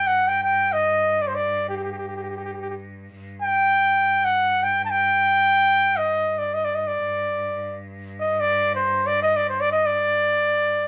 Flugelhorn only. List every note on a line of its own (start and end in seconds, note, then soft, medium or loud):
0.07 0.29 F#5 medium
0.28 0.43 G5 medium
0.44 0.74 G5 medium
0.73 1.23 D#5 medium
1.22 1.29 D5 medium
1.28 1.37 C5 medium
1.35 1.67 D5 medium
1.69 1.75 G4 medium
1.77 1.83 G4 soft
1.84 1.90 G4 medium
1.92 1.97 G4 soft
1.98 2.04 G4 soft
2.08 2.13 G4 soft
2.16 2.21 G4 soft
2.23 2.28 G4 soft
2.30 2.36 G4 soft
2.37 2.43 G4 soft
2.45 2.51 G4 soft
2.54 2.59 G4 soft
2.62 2.67 G4 soft
2.70 2.75 G4 soft
3.43 4.26 G5 loud
4.25 4.65 F#5 medium
4.63 4.85 G5 medium
4.85 4.92 A5 medium
4.90 5.98 G5 loud
5.97 6.40 D#5 medium
6.39 6.56 D5 medium
6.54 6.66 D#5 medium
6.65 6.76 D5 medium
6.75 6.89 D#5 medium
6.87 7.80 D5 medium
8.20 8.42 D#5 medium
8.41 8.75 D5 medium
8.76 9.08 C5 medium
9.07 9.22 D5 medium
9.23 9.38 D#5 medium
9.37 9.48 D5 medium
9.49 9.62 C5 medium
9.61 9.71 D5 medium
9.72 9.88 D#5 medium
9.86 10.88 D5 medium